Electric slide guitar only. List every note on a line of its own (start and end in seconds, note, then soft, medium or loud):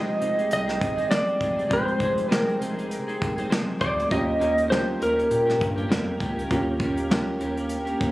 0.00 0.52 D#5 medium
0.53 1.08 D#5 loud
1.11 1.72 D5 medium
1.73 2.33 C5 medium
2.33 2.58 A#4 medium
3.81 4.11 D5 loud
4.12 4.73 D#5 medium
4.70 5.01 C5 medium
5.03 8.12 A#4 medium